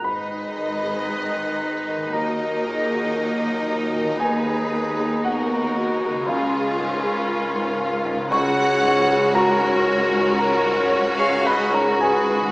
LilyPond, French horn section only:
\new Staff \with { instrumentName = "French horn section" } { \time 4/4 \key gis \dorian \tempo 4 = 58 r2 fis'8 gis'8 ais'8 fis'8 | gis'4 b8 fis'8 gis'8 ais'4. | gis'4 fis'4 ais'4 gis'4 | }